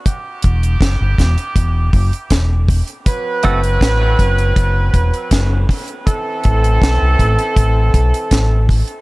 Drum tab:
HH |x-xxx-xxx-oxx-ox|x-xxx-xxx-xxx-ox|x-xxx-xxx-xxx-ox|
SD |----o-o-----o---|----o-------o---|----o-------o---|
BD |o-o-o-o-o-o-o-o-|o-o-o-o-o-o-o-o-|o-o-o-o-o-o-o-o-|